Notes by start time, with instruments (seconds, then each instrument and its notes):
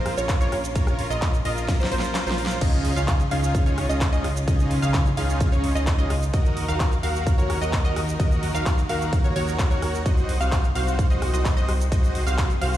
Already playing: analog synth bass A#1, string section A#3 C#4 F4, supersaw synth F4 A#4 C5, synth pluck C5
0.06 cross-stick, open hi-hat
0.17 analog synth bass A#1, supersaw synth F4 A#4 C#5, synth pluck C#5, closed hi-hat, shaker
0.29 kick, clap, closed hi-hat, ride, shaker
0.40 analog synth bass A#1, supersaw synth F4 A#4 C#5, synth pluck C#5, closed hi-hat, shaker
0.52 cross-stick, open hi-hat
0.64 closed hi-hat, shaker
0.75 analog synth bass A#1, supersaw synth F4 A#4 C#5, synth pluck C#5, kick, closed hi-hat, ride, shaker
0.87 cross-stick, closed hi-hat, shaker
0.99 open hi-hat
1.10 analog synth bass A#1, supersaw synth F4 A#4 D#5, synth pluck D#5, shaker
1.22 kick, clap, closed hi-hat, ride, shaker
1.34 closed hi-hat, shaker
1.45 analog synth bass A#1, supersaw synth F4 A#4 D#5, synth pluck D#5, open hi-hat
1.57 closed hi-hat, shaker
1.68 kick, snare, closed hi-hat, ride, shaker
1.80 analog synth bass A#1, supersaw synth F4 A#4 C5, synth pluck C5, closed hi-hat, shaker
1.84 snare
1.92 analog synth bass A#1, supersaw synth F4 A#4 C5, synth pluck C5, open hi-hat
1.99 snare, closed hi-hat
2.04 shaker
2.15 snare, clap, closed hi-hat, ride, shaker
2.27 analog synth bass A#1, supersaw synth F4 A#4 C5, synth pluck C5, snare, closed hi-hat, shaker
2.38 open hi-hat
2.46 snare
2.50 shaker
2.61 analog synth bass C#2, string section C#3 C#4 D#4, supersaw synth C#4 D#4 F4 G#4 D#5, synth pluck D#5, kick, closed hi-hat, crash, ride, shaker
2.73 closed hi-hat, shaker
2.85 open hi-hat
2.96 analog synth bass C#2, supersaw synth C#4 D#4 F4 G#4 F5, synth pluck F5, shaker
3.08 kick, clap, closed hi-hat, ride, shaker
3.20 closed hi-hat, shaker
3.31 analog synth bass C#2, supersaw synth C#4 D#4 F4 G#4 F5, synth pluck F5, open hi-hat
3.43 closed hi-hat, shaker
3.55 kick, closed hi-hat, ride, shaker
3.66 analog synth bass C#2, supersaw synth C#4 D#4 F4 G#4 C#5, synth pluck C#5, closed hi-hat, shaker
3.78 cross-stick, open hi-hat
3.89 analog synth bass C#2, supersaw synth C#4 D#4 F4 G#4 D#5, synth pluck D#5, closed hi-hat, shaker
4.01 kick, clap, closed hi-hat, ride, shaker
4.13 analog synth bass C#2, supersaw synth C#4 D#4 F4 G#4 D#5, synth pluck D#5, closed hi-hat, shaker
4.24 cross-stick, open hi-hat
4.36 closed hi-hat, shaker
4.47 analog synth bass C#2, supersaw synth C#4 D#4 F4 G#4 D#5, synth pluck D#5, kick, closed hi-hat, ride, shaker
4.59 closed hi-hat, shaker
4.71 open hi-hat
4.82 analog synth bass C#2, supersaw synth C#4 D#4 F4 G#4 F5, synth pluck F5, closed hi-hat, shaker
4.94 kick, clap, closed hi-hat, ride, shaker
5.06 closed hi-hat, shaker
5.17 analog synth bass C#2, supersaw synth C#4 D#4 F4 G#4 F5, synth pluck F5, open hi-hat
5.29 closed hi-hat, shaker
5.40 kick, closed hi-hat, ride, shaker
5.52 analog synth bass C#2, supersaw synth C#4 D#4 F4 G#4 C#5, synth pluck C#5, closed hi-hat, shaker
5.64 open hi-hat
5.75 analog synth bass C#2, supersaw synth C#4 D#4 F4 G#4 D#5, synth pluck D#5, closed hi-hat, shaker
5.87 kick, clap, closed hi-hat, ride, shaker
5.99 analog synth bass C#2, supersaw synth C#4 D#4 F4 G#4 D#5, synth pluck D#5, closed hi-hat, shaker
6.10 cross-stick, open hi-hat
6.22 closed hi-hat, shaker
6.33 analog synth bass D#2, string section D#3 F#4 A#4, supersaw synth F#4 A#4 D#5, synth pluck D#5, kick, closed hi-hat, ride, shaker
6.45 closed hi-hat, shaker
6.57 open hi-hat
6.68 analog synth bass D#2, supersaw synth F#4 A#4 F5, synth pluck F5, closed hi-hat, shaker
6.80 kick, clap, closed hi-hat, ride, shaker
6.92 closed hi-hat, shaker
7.03 analog synth bass D#2, supersaw synth F#4 A#4 F5, synth pluck F5, open hi-hat
7.15 closed hi-hat, shaker
7.27 kick, closed hi-hat, ride, shaker
7.38 analog synth bass D#2, supersaw synth F#4 A#4 C#5, synth pluck C#5, closed hi-hat, shaker
7.50 cross-stick, open hi-hat
7.61 analog synth bass D#2, supersaw synth F#4 A#4 D#5, synth pluck D#5, closed hi-hat, shaker
7.73 kick, clap, closed hi-hat, ride, shaker
7.84 analog synth bass D#2, supersaw synth F#4 A#4 D#5, synth pluck D#5, closed hi-hat, shaker
7.96 cross-stick, open hi-hat
8.08 closed hi-hat, shaker
8.19 analog synth bass D#2, supersaw synth F#4 A#4 D#5, synth pluck D#5, kick, closed hi-hat, ride, shaker
8.31 closed hi-hat, shaker
8.43 open hi-hat
8.54 analog synth bass D#2, supersaw synth F#4 A#4 F5, synth pluck F5, closed hi-hat, shaker
8.66 kick, clap, closed hi-hat, ride, shaker
8.78 closed hi-hat, shaker
8.89 analog synth bass D#2, supersaw synth F#4 A#4 F5, synth pluck F5, open hi-hat
9.01 closed hi-hat, shaker
9.13 kick, closed hi-hat, ride, shaker
9.24 analog synth bass D#2, supersaw synth F#4 A#4 C#5, synth pluck C#5, closed hi-hat, shaker
9.36 analog synth bass D#2, supersaw synth F#4 A#4 C#5, synth pluck C#5, open hi-hat
9.48 closed hi-hat, shaker
9.59 kick, clap, closed hi-hat, ride, shaker
9.71 analog synth bass D#2, supersaw synth F#4 A#4 C#5, synth pluck C#5, closed hi-hat, shaker
9.82 cross-stick, open hi-hat
9.94 closed hi-hat, shaker
10.06 analog synth bass C2, string section C3 C4, supersaw synth F#4 C5 D#5, synth pluck D#5, kick, closed hi-hat, ride, shaker
10.17 closed hi-hat, shaker
10.29 open hi-hat
10.40 analog synth bass C2, supersaw synth F#4 C5 F5, synth pluck F5, closed hi-hat, shaker
10.52 kick, clap, closed hi-hat, ride, shaker
10.64 closed hi-hat, shaker
10.75 analog synth bass C2, supersaw synth F#4 C5 F5, synth pluck F5, open hi-hat
10.87 closed hi-hat, shaker
10.99 kick, closed hi-hat, ride, shaker
11.10 analog synth bass C2, supersaw synth F#4 C5 D#5, synth pluck D#5, closed hi-hat, shaker
11.22 cross-stick, open hi-hat
11.33 analog synth bass C2, supersaw synth F#4 C5 D#5, synth pluck D#5, closed hi-hat, shaker
11.45 kick, clap, closed hi-hat, ride, shaker
11.57 analog synth bass C2, supersaw synth F#4 C5 D#5, synth pluck D#5, closed hi-hat, shaker
11.69 cross-stick, open hi-hat
11.80 closed hi-hat, shaker
11.92 supersaw synth F#4 C5 D#5, string section G#4, synth pluck D#5, kick, closed hi-hat, ride, shaker
12.04 closed hi-hat, shaker
12.15 open hi-hat
12.26 analog synth bass C2, supersaw synth F#4 C5 F5, synth pluck F5, closed hi-hat, shaker
12.38 kick, clap, closed hi-hat, ride, shaker
12.50 closed hi-hat, shaker
12.61 analog synth bass C2, supersaw synth F#4 C5 F5, synth pluck F5, open hi-hat
12.73 closed hi-hat, shaker